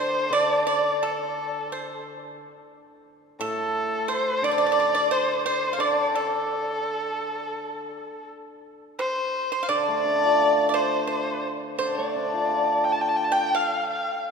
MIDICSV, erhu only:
0, 0, Header, 1, 2, 480
1, 0, Start_track
1, 0, Tempo, 684932
1, 229, Time_signature, 4, 2, 24, 8
1, 4065, Tempo, 709220
1, 6945, Tempo, 696056
1, 9879, End_track
2, 0, Start_track
2, 0, Title_t, "Erhu"
2, 0, Program_c, 0, 110
2, 2, Note_on_c, 0, 72, 82
2, 240, Note_on_c, 0, 74, 89
2, 251, Note_off_c, 0, 72, 0
2, 473, Note_off_c, 0, 74, 0
2, 478, Note_on_c, 0, 74, 78
2, 717, Note_on_c, 0, 69, 68
2, 728, Note_off_c, 0, 74, 0
2, 1435, Note_off_c, 0, 69, 0
2, 2392, Note_on_c, 0, 69, 85
2, 2866, Note_on_c, 0, 72, 88
2, 2876, Note_off_c, 0, 69, 0
2, 3106, Note_on_c, 0, 74, 99
2, 3117, Note_off_c, 0, 72, 0
2, 3587, Note_on_c, 0, 72, 83
2, 3598, Note_off_c, 0, 74, 0
2, 3824, Note_off_c, 0, 72, 0
2, 3829, Note_on_c, 0, 72, 77
2, 4067, Note_on_c, 0, 74, 82
2, 4077, Note_off_c, 0, 72, 0
2, 4301, Note_on_c, 0, 69, 77
2, 4311, Note_off_c, 0, 74, 0
2, 5741, Note_off_c, 0, 69, 0
2, 6222, Note_on_c, 0, 72, 82
2, 6697, Note_on_c, 0, 74, 100
2, 6707, Note_off_c, 0, 72, 0
2, 7423, Note_on_c, 0, 72, 80
2, 7434, Note_off_c, 0, 74, 0
2, 7659, Note_off_c, 0, 72, 0
2, 7663, Note_on_c, 0, 72, 68
2, 7891, Note_off_c, 0, 72, 0
2, 8147, Note_on_c, 0, 74, 80
2, 8868, Note_on_c, 0, 79, 85
2, 8879, Note_off_c, 0, 74, 0
2, 8922, Note_on_c, 0, 81, 79
2, 8932, Note_off_c, 0, 79, 0
2, 8984, Note_on_c, 0, 79, 79
2, 8994, Note_off_c, 0, 81, 0
2, 9036, Note_on_c, 0, 81, 78
2, 9046, Note_off_c, 0, 79, 0
2, 9088, Note_on_c, 0, 79, 81
2, 9099, Note_off_c, 0, 81, 0
2, 9141, Note_on_c, 0, 81, 76
2, 9151, Note_off_c, 0, 79, 0
2, 9197, Note_on_c, 0, 79, 96
2, 9208, Note_off_c, 0, 81, 0
2, 9352, Note_on_c, 0, 77, 82
2, 9362, Note_off_c, 0, 79, 0
2, 9590, Note_off_c, 0, 77, 0
2, 9597, Note_on_c, 0, 77, 73
2, 9814, Note_off_c, 0, 77, 0
2, 9879, End_track
0, 0, End_of_file